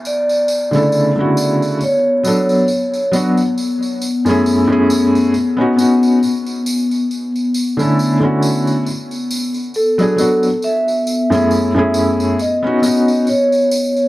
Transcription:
Already playing: ambient pad B3, vibraphone E5
0.05 vibraphone D5, tambourine
0.29 tambourine
0.48 tambourine
0.71 felt piano C#3 D3 A3 E4, tambourine
0.76 felt piano A4
0.92 tambourine
1.16 felt piano C#3 D3 A3 E4
1.20 felt piano F#4
1.37 tambourine
1.62 tambourine
1.81 vibraphone C#5, tambourine
2.23 felt piano F#3 B3 D4 A4, tambourine
2.49 tambourine
2.68 tambourine
2.94 tambourine
3.12 felt piano F#3 B3 D4, tambourine
3.16 felt piano F#4
3.37 tambourine
3.58 tambourine
3.82 tambourine
4.02 tambourine
4.25 felt piano F#2 A3 C#4 E4, tambourine
4.29 felt piano G#4
4.46 tambourine
4.68 felt piano F#2 A3 C#4 E4
4.72 felt piano G#4
4.90 tambourine
5.15 tambourine
5.34 tambourine
5.57 felt piano B3 C#4 D#4
5.61 felt piano F#4
5.76 felt piano B3 C#4 D#4 F#4, tambourine
6.03 tambourine
6.23 tambourine
6.46 tambourine
6.66 tambourine
6.91 tambourine
7.11 tambourine
7.36 tambourine
7.54 tambourine
7.77 felt piano D3 A3 C#4 E4, tambourine
7.81 felt piano A4
7.99 tambourine
8.20 felt piano D3 A3 C#4 E4
8.25 felt piano F#4
8.42 tambourine
8.67 tambourine
8.86 tambourine
9.11 tambourine
9.31 tambourine
9.54 tambourine
9.74 vibraphone A4, tambourine
9.98 felt piano F#3 B3 D4 G#4, tambourine
10.16 felt piano F#3 B3 D4, tambourine
10.21 felt piano F#4
10.43 tambourine
10.62 ambient pad B3, vibraphone E5, tambourine
10.88 tambourine
11.07 tambourine
11.30 felt piano F#2 A3 C#4 E4, tambourine
11.34 felt piano G#4
11.51 tambourine
11.74 felt piano F#2 A3 C#4 E4
11.79 felt piano G#4
11.94 tambourine
12.20 tambourine
12.39 vibraphone D#5, tambourine
12.62 felt piano B3 C#4 D#4
12.67 felt piano F#4
12.82 felt piano B3 C#4 D#4, tambourine
12.86 felt piano F#4
13.08 tambourine
13.27 vibraphone C#5, tambourine
13.52 tambourine
13.71 tambourine
13.96 tambourine

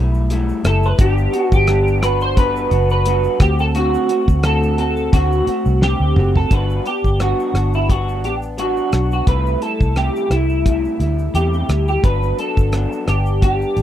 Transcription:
Already playing: fingered electric bass B1, clean electric guitar G3 A3 E4
0.14 shaker
0.30 clean electric guitar G3 A3 E4, closed hi-hat, shaker
0.49 shaker
0.63 fingered electric bass F#1, clean electric guitar G3 A3 E4 A4, cross-stick, closed hi-hat, shaker
0.83 clean electric guitar B4, shaker
0.98 fingered electric bass G1, clean electric guitar G3 B3 D4 G4, kick, closed hi-hat, shaker
1.18 shaker
1.33 clean electric guitar B3 D4 F#4, closed hi-hat, shaker
1.41 clean electric guitar F#4
1.52 fingered electric bass G1, clean electric guitar G4, kick, shaker
1.67 clean electric guitar G3 B3 D4, cross-stick, closed hi-hat, shaker
1.87 shaker
2.02 clean electric guitar B3 D4 F#4 B4, cross-stick, closed hi-hat, shaker
2.21 clean electric guitar C5, shaker
2.36 clean electric guitar G3 B3 D4 F#4 B4, kick, closed hi-hat, shaker
2.56 shaker
2.70 fingered electric bass F#1, clean electric guitar B3 D4 F#4, closed hi-hat, shaker
2.90 clean electric guitar B4, shaker
3.05 clean electric guitar G3 B3 D4 F#4, closed hi-hat, shaker
3.24 shaker
3.40 fingered electric bass D2, clean electric guitar A3 C4 F#4 G4, kick, cross-stick, closed hi-hat, shaker
3.59 clean electric guitar A4, shaker
3.74 clean electric guitar D3 A3 C4 F#4, closed hi-hat, shaker
3.94 shaker
4.09 clean electric guitar A3 C4 F#4, closed hi-hat, shaker
4.28 fingered electric bass D2, kick, shaker
4.43 clean electric guitar D3 A3 C4 F#4 A4, cross-stick, closed hi-hat, shaker
4.63 shaker
4.78 clean electric guitar A3 C4 F#4 A4, closed hi-hat, shaker
4.96 shaker
5.12 fingered electric bass D2, clean electric guitar D3 A3 C4 F#4, kick, closed hi-hat, shaker
5.32 shaker
5.46 clean electric guitar A3 C4 F#4, muted fingered electric bass stroke, closed hi-hat, shaker
5.66 fingered electric bass C2, shaker
5.81 clean electric guitar D3 A3 C4 G4, snare
6.00 fingered electric bass D2
6.16 fingered electric bass F#1, clean electric guitar A3 C4 F#4, mid tom
6.35 clean electric guitar A4, floor tom
6.51 fingered electric bass G1, clean electric guitar G3 B3 D4 F#4 B4, kick, closed hi-hat, shaker
6.70 shaker
6.86 clean electric guitar B3 D4 G4, closed hi-hat, shaker
7.04 fingered electric bass G1, kick, shaker
7.19 clean electric guitar G3 B3 D4 F#4, cross-stick, closed hi-hat, shaker
7.40 shaker
7.54 fingered electric bass G1, clean electric guitar B3 D4 F#4, cross-stick, closed hi-hat, shaker
7.73 clean electric guitar E4, shaker
7.89 clean electric guitar G3 B3 D4 F#4, kick, closed hi-hat, shaker
8.09 shaker
8.23 fingered electric bass A1, clean electric guitar B3 D4 G4, closed hi-hat, shaker
8.42 shaker
8.58 clean electric guitar G3 B3 D4 F#4, closed hi-hat, shaker
8.77 shaker
8.92 fingered electric bass B1, clean electric guitar B3 D4 F#4, cross-stick, closed hi-hat, shaker
9.11 clean electric guitar F#4, shaker
9.27 fingered electric bass C2, clean electric guitar C3 G3 A3 E4 B4, kick, closed hi-hat, shaker
9.46 shaker
9.61 clean electric guitar G3 A3 E4 A4, closed hi-hat, shaker
9.81 fingered electric bass C2, kick, shaker
9.96 clean electric guitar C3 G3 A3 E4 G4, cross-stick, closed hi-hat, shaker
10.16 shaker
10.30 fingered electric bass C2, clean electric guitar G3 A3 E4, cross-stick, closed hi-hat, shaker
10.49 shaker
10.65 clean electric guitar C3 G3 A3 E4, kick, closed hi-hat, shaker
10.85 shaker
10.99 fingered electric bass D2, clean electric guitar G3 A3 E4, closed hi-hat, shaker
11.19 shaker
11.34 fingered electric bass E2, clean electric guitar C3 G3 A3 E4 G4, closed hi-hat, shaker
11.53 shaker
11.69 fingered electric bass D2, clean electric guitar G3 A3 E4, cross-stick, closed hi-hat, shaker
11.88 clean electric guitar G4, shaker
12.03 fingered electric bass G1, clean electric guitar G2 F#3 B3 D4 B4, kick, closed hi-hat, shaker
12.23 shaker
12.37 clean electric guitar F#3 B3 D4 A4, closed hi-hat, shaker
12.57 fingered electric bass G1, kick, shaker
12.72 clean electric guitar G2 F#3 B3 D4, cross-stick, closed hi-hat, shaker
12.92 shaker
13.07 fingered electric bass G1, clean electric guitar B3 D4 G4, cross-stick, closed hi-hat, shaker
13.26 shaker
13.41 clean electric guitar G2 B3 D4 G4, kick, closed hi-hat, shaker
13.62 shaker
13.75 fingered electric bass A1, clean electric guitar B3 D4, closed hi-hat, shaker

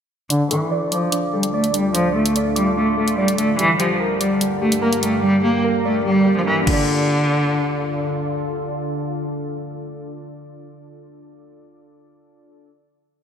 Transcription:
0.30 ambient pad D2 D3 A3 F4, cello D3, synth keys D4, closed hi-hat
0.51 cello E3, synth keys A4, closed hi-hat
0.71 synth keys D5
0.92 cello F3, synth keys D6, closed hi-hat
1.12 synth keys D4, closed hi-hat
1.33 cello G3, synth keys A4
1.43 closed hi-hat
1.53 cello A3, synth keys D5
1.64 closed hi-hat
1.74 cello G3, synth keys D4, closed hi-hat
1.94 cello F3, synth keys D4, closed hi-hat
2.15 cello A3, synth keys A4
2.26 closed hi-hat
2.36 synth keys D5, closed hi-hat
2.56 cello G3, synth keys D6, closed hi-hat
2.77 cello A3, synth keys D4
2.97 cello A3, synth keys A4
3.08 closed hi-hat
3.18 cello G3, synth keys D5
3.28 closed hi-hat
3.38 cello A3, synth keys D4, closed hi-hat
3.59 ambient pad G2 A#3 G4, cello E3, synth keys G3, closed hi-hat
3.79 cello F3, synth keys G4, closed hi-hat
4.00 synth keys A#4
4.20 cello G3, synth keys D5, closed hi-hat
4.41 synth keys G3, closed hi-hat
4.62 cello A3, synth keys G4
4.72 closed hi-hat
4.82 cello A#3, synth keys A#4
4.93 closed hi-hat
5.03 synth keys G3, cello A3, closed hi-hat
5.23 synth keys G3, cello G3
5.44 cello A#3, synth keys G4
5.64 synth keys A#4
5.85 cello A3, synth keys D5
6.05 cello G3, synth keys G3
6.26 synth keys G4
6.36 cello F3
6.47 cello E3, synth keys A#4
6.61 synth keys D4
6.65 ambient pad D3 D4 F4 A4, cello D3, synth keys F4 A4, kick, crash
6.73 synth keys D5

